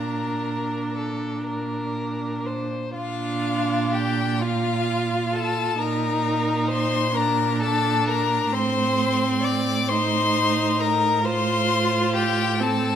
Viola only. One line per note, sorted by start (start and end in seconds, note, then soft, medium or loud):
0.00 2.71 D4 soft
2.97 4.43 D4 medium
4.42 5.80 F4 medium
5.80 7.13 D#4 medium
7.18 8.55 D4 medium
8.53 9.92 C4 medium
9.91 11.24 D#4 medium
11.25 12.62 F4 medium
12.60 12.96 C4 medium